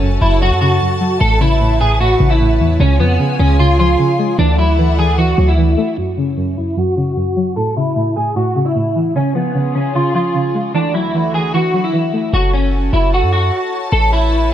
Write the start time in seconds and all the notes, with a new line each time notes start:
Already playing: F#1 C#3 C#4 F#4 A4 C#5 A5
0.02 F#2
0.21 F#1 F#2 E4
0.42 F#2 F#4
0.51 F#2
0.61 C#3 F#4
0.81 F#2
1.01 F#3
1.20 A1 A2 E4 A4 B4 C#5
1.41 C#3 E4
1.60 A2
1.81 A2 G#4
2.00 A2 F#4
2.20 A1 C#3
2.30 E4
2.40 A2
2.60 E2 E3
2.80 C#2 C#3 C#4 F4 G#4 G#5
3.00 F2 F3 B3
3.20 C#3
3.39 C#2 C#3 C#4
3.59 C#3 F4
3.79 F3 F4
3.99 C#3
4.19 G#3
4.39 D2 E3 D4 E4 A4 D5 F#5
4.58 F#3 E4
4.79 E3
4.98 E3 G#4
5.18 E3 F#4
5.38 D2 F#3
5.48 E4
5.58 E3
5.78 A3
5.98 F#2 F#4
6.17 C#3 C#4
6.37 F#2
6.57 F#2 E4
6.77 F#2 F#4
6.97 C#3 F#4
7.17 F#2
7.37 F#3
7.56 A2 A4
7.77 C#3 E4
7.96 A2
8.16 A2 G#4
8.36 A2 F#4
8.56 C#3
8.66 E4
8.76 A2
8.96 E3
9.16 C#3 C#4 F4 G#4
9.35 F3 B3
9.55 C#3
9.75 C#3 C#4
9.95 C#3 F4
10.15 F3 F4
10.35 C#3
10.55 G#3
10.74 D2 D3 E3 D4 E4 F#4
10.94 F#3 E4
11.14 E3
11.34 E3 G#4
11.54 E3 F#4
11.74 F#3
11.84 E4
11.93 E3
12.13 A3
12.33 F#1 F#4 A4 C#5 A5
12.53 C#4
12.93 F#1 E4
13.14 F#4
13.23 F#2
13.33 F#4
13.92 A1 E4 A4 B4
14.13 E4